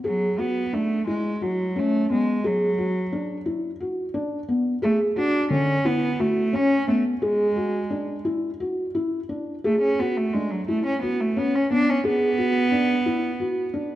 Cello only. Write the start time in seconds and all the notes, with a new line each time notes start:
0.05 F#3
0.39 B3
0.73 A3
1.07 G#3
1.36 G#3
1.43 F#3
1.79 A3
2.12 G#3
2.46 F#3
4.83 A3
5.18 D4
5.51 C#4
5.86 B3
6.20 A3
6.54 C#4
6.88 A3
7.23 G#3
9.65 A3
9.81 C#4
10.00 B3
10.17 A3
10.33 G#3
10.50 F#3
10.68 A3
10.86 C#4
11.02 B3
11.20 A3
11.38 B3
11.55 C#4
11.73 D4
11.90 C#4
12.07 B3